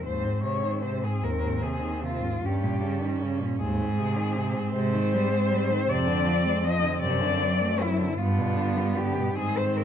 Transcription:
0.03 0.25 D#2 medium
0.03 1.04 G#2 medium
0.03 2.40 C4 medium
0.03 0.42 C5 loud
0.24 0.44 G#2 medium
0.42 0.65 C3 medium
0.42 0.82 C#5 medium
0.64 0.85 D#3 medium
0.82 1.06 C3 medium
0.82 1.05 C5 medium
1.04 1.24 G#2 medium
1.04 1.25 G#4 medium
1.22 1.44 D#2 medium
1.22 2.25 D#2 medium
1.22 1.64 A#4 loud
1.42 1.64 G#2 medium
1.62 1.83 C3 medium
1.62 2.04 G#4 loud
1.82 2.04 D#3 medium
2.02 2.23 C3 medium
2.02 2.47 F4 loud
2.21 2.42 G#2 medium
2.42 2.64 G2 medium
2.42 3.41 G2 medium
2.42 3.61 C#4 medium
2.42 3.22 G4 medium
2.63 2.84 A#2 medium
2.82 3.03 C#3 medium
3.02 3.23 D#3 medium
3.22 3.44 C#3 medium
3.42 3.61 A#2 medium
3.60 3.83 D#2 medium
3.60 4.56 G#2 medium
3.60 8.19 C4 medium
3.60 4.70 G#4 loud
3.81 4.01 G#2 medium
3.99 4.20 C3 medium
4.18 4.39 D#3 medium
4.37 4.57 C3 medium
4.56 4.74 G#2 medium
4.73 5.70 G#2 loud
4.73 4.95 C3 medium
4.73 5.90 C5 loud
4.93 5.15 D#3 medium
5.14 5.32 G3 medium
5.30 5.52 G#3 medium
5.50 5.72 G3 medium
5.70 5.87 D#3 medium
5.88 6.83 F2 medium
5.88 6.09 C3 medium
5.88 6.66 D5 loud
6.07 6.27 D3 medium
6.26 6.47 F3 medium
6.45 6.67 G#3 medium
6.64 6.84 F3 medium
6.64 7.01 D#5 loud
6.82 7.01 D3 medium
7.01 8.00 F#2 medium
7.01 7.22 C3 medium
7.01 7.83 D5 loud
7.21 7.41 D3 medium
7.39 7.62 F#3 medium
7.61 7.82 A3 medium
7.81 8.00 F#3 medium
7.81 8.19 E4 loud
7.99 8.19 D3 medium
8.18 8.40 G2 medium
8.18 9.18 G2 medium
8.18 9.36 B3 medium
8.18 8.99 F4 loud
8.39 8.58 B2 medium
8.57 8.77 D3 medium
8.75 8.98 G3 medium
8.97 9.18 D3 medium
8.97 9.37 G4 loud
9.17 9.35 B2 medium
9.36 9.84 G#2 medium
9.36 9.84 D#3 medium
9.36 9.84 C4 medium
9.36 9.59 G#4 loud
9.58 9.78 C5 loud
9.77 9.84 A#4 medium

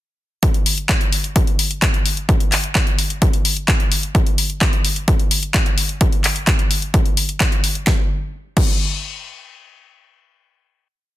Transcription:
0.43 kick loud
0.43 closed hi-hat loud
0.54 closed hi-hat soft
0.66 open hi-hat loud
0.78 closed hi-hat soft
0.89 kick loud
0.89 clap loud
0.89 closed hi-hat loud
1.01 closed hi-hat soft
1.13 open hi-hat medium
1.24 closed hi-hat soft
1.36 kick loud
1.36 closed hi-hat medium
1.47 closed hi-hat soft
1.59 open hi-hat loud
1.71 closed hi-hat soft
1.82 kick loud
1.82 clap loud
1.82 closed hi-hat loud
1.94 closed hi-hat soft
2.06 open hi-hat medium
2.17 closed hi-hat soft
2.29 kick loud
2.29 closed hi-hat medium
2.40 closed hi-hat soft
2.52 clap medium
2.52 open hi-hat loud
2.64 closed hi-hat soft
2.75 kick loud
2.75 clap loud
2.75 closed hi-hat medium
2.87 closed hi-hat soft
2.99 open hi-hat loud
3.10 closed hi-hat soft
3.22 kick loud
3.22 closed hi-hat medium
3.33 closed hi-hat soft
3.45 open hi-hat loud
3.57 closed hi-hat soft
3.68 kick loud
3.68 clap loud
3.68 closed hi-hat loud
3.80 closed hi-hat soft
3.92 open hi-hat loud
4.03 closed hi-hat soft
4.15 kick loud
4.15 closed hi-hat medium
4.27 closed hi-hat soft
4.38 open hi-hat loud
4.50 closed hi-hat soft
4.61 kick loud
4.61 clap loud
4.61 closed hi-hat medium
4.73 closed hi-hat soft
4.85 open hi-hat medium
4.96 closed hi-hat soft
5.08 kick loud
5.08 closed hi-hat medium
5.19 closed hi-hat soft
5.31 open hi-hat loud
5.43 closed hi-hat soft
5.54 kick loud
5.54 clap loud
5.54 closed hi-hat medium
5.66 closed hi-hat soft
5.78 open hi-hat loud
5.89 closed hi-hat soft
6.01 kick loud
6.01 closed hi-hat medium
6.12 closed hi-hat soft
6.24 clap medium
6.24 open hi-hat loud
6.36 closed hi-hat soft
6.47 kick loud
6.47 clap loud
6.47 closed hi-hat medium
6.59 closed hi-hat soft
6.71 open hi-hat loud
6.82 closed hi-hat soft
6.94 kick loud
6.94 closed hi-hat medium
7.06 closed hi-hat soft
7.17 open hi-hat loud
7.29 closed hi-hat soft
7.40 kick loud
7.40 clap loud
7.40 closed hi-hat medium
7.52 closed hi-hat soft
7.64 open hi-hat loud
7.75 closed hi-hat soft
7.87 kick loud
7.87 snare medium
8.57 kick loud
8.57 crash medium

